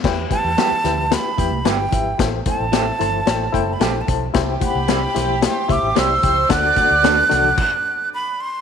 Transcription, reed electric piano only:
<<
  \new Staff \with { instrumentName = "Reed electric piano" } { \time 4/4 \key e \minor \tempo 4 = 111 <e' g' b' g''>8 <e' g' b' g''>8 <e' g' b' g''>8 <e' g' b' g''>8 <e' g' b' g''>8 <e' g' b' g''>8 <e' g' b' g''>8 <e' g' b' e''>8 | <e' a' c'' g''>8 <e' a' c'' g''>8 <e' a' c'' e''>8 <e' a' c'' a''>8 <e' a' c'' g''>8 <e' a' c'' g''>8 <e' a' c'' g''>8 <e' a' c'' a''>8 | <e' g' c'' g''>8 <e' g' c'' fis''>8 <e' g' c'' g''>8 <e' g' c'' g''>8 <e' g' c'' g''>8 <e' g' c'' e''>8 <e' g' c'' d''>8 <e' g' c'' g''>8 | <d' fis' a' fis''>8 <d' fis' a' fis''>8 <d' fis' a' b'>8 <d' fis' a' fis''>8 r2 | }
  \new Staff \with { instrumentName = "Reed electric piano" } { \clef bass \time 4/4 \key e \minor e4. r2 r8 | a,4. r2 r8 | c4. r2 r8 | d4. r2 r8 | }
>>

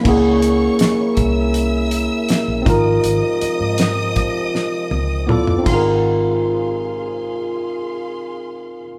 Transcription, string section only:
\new Staff \with { instrumentName = "String section" } { \time 4/4 \key aes \major \tempo 4 = 80 <des'' des'''>4. <fes'' fes'''>2 <ees'' ees'''>8~ | <ees'' ees'''>2. <d'' d'''>8 <aes' f'' c'''>8~ | <aes' f'' c'''>1 | }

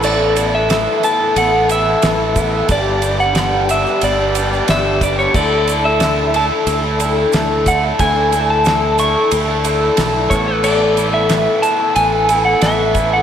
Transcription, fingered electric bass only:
\new Staff \with { instrumentName = "Fingered electric bass" } { \clef bass \time 4/4 \key d \lydian \tempo 4 = 91 a,,4. r8 a,,4 a,,4 | g,,2 g,,4 g,,4 | d,2 d,4 d,4 | d,2 d,4 b,,8 a,,8~ |
a,,4. r8 a,,4 a,,4 | }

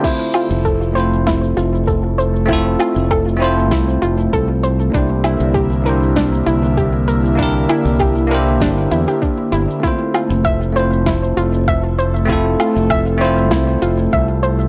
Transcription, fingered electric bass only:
\new Staff \with { instrumentName = "Fingered electric bass" } { \clef bass \time 4/4 \key f \major \tempo 4 = 98 r8. f,,4.~ f,,16 f,,4.~ | f,,8 r16 f,,4~ f,,16 c,8 f,,8 c,4 | c,8. c,4.~ c,16 c,4.~ | c,8 r16 c,4~ c,16 g,,8 e,16 r8. g,,16 r16 |
r8. f,,4.~ f,,16 f,,4.~ | f,,8 r16 f,,4~ f,,16 c,8 f,,8 c,4 | }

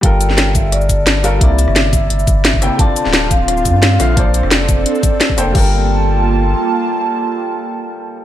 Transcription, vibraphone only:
\new Staff \with { instrumentName = "Vibraphone" } { \time 4/4 \key g \dorian \tempo 4 = 174 g''4. e''8 d''4. f''8 | e''8 e''2. r8 | a''4. f''2 e''8 | d''2. r4 |
g''1~ | g''1 | }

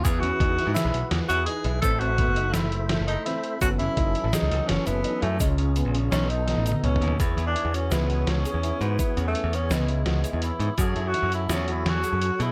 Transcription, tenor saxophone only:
\new Staff \with { instrumentName = "Tenor saxophone" } { \time 5/4 \key e \major \tempo 4 = 168 gis'8 fis'4. e'4 r8 fis'8 gis'4 | a'8 fis'4. e'4 r8 dis'8 e'4 | fis'8 e'4. dis'4 cis'8 b4 a8 | gis8 r4. cis'8 dis'4. cis'4 |
e'8. d'8. cis'8 b4 cis'4. b8 | b8. a8. cis'8 gis2 e'4 | gis'8. fis'8. e'8 cis'8 e'8 fis'4. e'8 | }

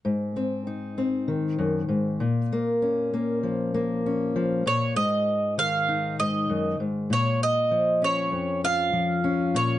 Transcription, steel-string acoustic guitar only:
\new Staff \with { instrumentName = "Steel-string acoustic guitar" } { \clef bass \time 4/4 \key aes \mixolydian \tempo 4 = 98 << { r8 c'8 ees'8 c'2 r8 | bes8 des'8 bes4 bes8 des'4 r8 | r4. ees'2 r8 | r4 des'4 f'4 des'8 r8 | } \\ { aes,2 ees8 ges,8 aes,8 bes,8~ | bes,4. f4. f8 bes,8 | aes,4 ees4 aes,8 ges,8 aes,8 bes,8~ | bes,8 f4 f,4 f4 bes,8 | } >> }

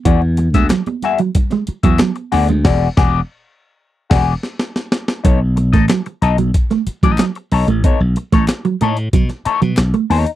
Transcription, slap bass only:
\new Staff \with { instrumentName = "Slap bass" } { \clef bass \time 4/4 \key b \mixolydian \tempo 4 = 92 e,8. d,16 r4. r16 e,16 r8 d,16 d,16 | e,,8 e,,8 r4 r16 e,,8 r4 r16 | b,,8. a,,16 r8 b,,8 r8. a,,16 r8 b,,16 a,,16 | r16 b,,16 r16 a,,16 r8 a,8 b,16 r8 b,16 b,,16 r16 dis,16 r16 | }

